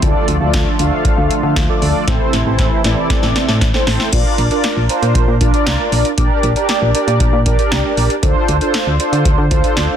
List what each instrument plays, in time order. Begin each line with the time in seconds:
0.02 fm bass D2, analog synth pad D3 F3 A3 F4, analog polysynth D4 F4 A4 D5, kick, closed hi-hat
0.28 fm bass D2, closed hi-hat
0.41 fm bass D2, analog polysynth D4 F4 A4 D5
0.54 fm bass D2, kick, snare, closed hi-hat
0.79 fm bass D2, analog polysynth D4 F4 A4 F5, closed hi-hat
1.05 kick, closed hi-hat
1.18 fm bass D2
1.31 closed hi-hat
1.43 fm bass D3
1.56 fm bass D2, kick, snare, closed hi-hat
1.69 analog polysynth D4 F4 A4 D5
1.82 fm bass D2, analog polysynth D4 F4 A4 D5, open hi-hat
2.07 fm bass A1, analog synth pad C3 E3 E4, analog polysynth C4 E4 A4 C5, kick, snare, closed hi-hat
2.33 fm bass A1, snare, closed hi-hat
2.46 fm bass A1, analog polysynth C4 E4 A4 C5
2.59 fm bass A1, kick, snare, closed hi-hat
2.84 fm bass A1, analog polysynth C4 E4 A4 D5, snare, closed hi-hat
3.10 kick, snare, closed hi-hat
3.23 fm bass A1, snare
3.36 snare, closed hi-hat
3.48 fm bass A2, snare
3.61 fm bass A1, kick, snare, closed hi-hat
3.74 analog polysynth C4 E4 A4 C5, snare
3.87 fm bass A1, analog polysynth C4 E4 A4 C5, snare, open hi-hat
4.00 snare
4.13 fm bass A#1, analog polysynth D4 F4 A#4 D5, kick, closed hi-hat, crash
4.38 fm bass A#1, closed hi-hat
4.51 analog polysynth D4 F4 A#4 D5, closed hi-hat
4.64 snare, closed hi-hat
4.77 fm bass A#1
4.89 analog polysynth D4 F4 A#4 C5, closed hi-hat
5.02 fm bass A#2, closed hi-hat
5.15 fm bass A#1, kick, closed hi-hat
5.28 fm bass A#2
5.41 fm bass A#1, analog polysynth D4 F4 A#4 D5, kick, closed hi-hat
5.54 analog polysynth D4 F4 A#4 D5, closed hi-hat
5.66 fm bass C2, snare, closed hi-hat
5.92 fm bass A#1, open hi-hat
6.05 closed hi-hat
6.18 fm bass A#1, analog polysynth D4 G4 A#4 D5, kick, closed hi-hat
6.43 fm bass A#1, closed hi-hat
6.56 analog polysynth D4 G4 A#4 D5, closed hi-hat
6.69 snare, closed hi-hat
6.82 fm bass A#1
6.95 analog polysynth D4 G4 A#4 D5, closed hi-hat
7.07 fm bass A#2, closed hi-hat
7.20 fm bass A#1, kick, closed hi-hat
7.33 fm bass A#2
7.46 fm bass A#1, analog polysynth D4 G4 A#4 D5, kick, closed hi-hat
7.59 analog polysynth D4 G4 A#4 D5, closed hi-hat
7.71 fm bass C2, snare, closed hi-hat
7.97 fm bass A#1, open hi-hat
8.10 closed hi-hat
8.23 fm bass D2, analog polysynth D4 F4 A4 C5, kick, closed hi-hat
8.48 fm bass D2, closed hi-hat
8.61 analog polysynth D4 F4 A4 C5, closed hi-hat
8.74 snare, closed hi-hat
8.87 fm bass D2
9.00 analog polysynth D4 F4 A4 C5, closed hi-hat
9.12 fm bass D3, closed hi-hat
9.25 fm bass D2, kick, closed hi-hat
9.38 fm bass D3
9.51 fm bass D2, analog polysynth D4 F4 A4 C5, kick, closed hi-hat
9.64 analog polysynth D4 F4 A4 C5, closed hi-hat
9.77 fm bass D2, snare, closed hi-hat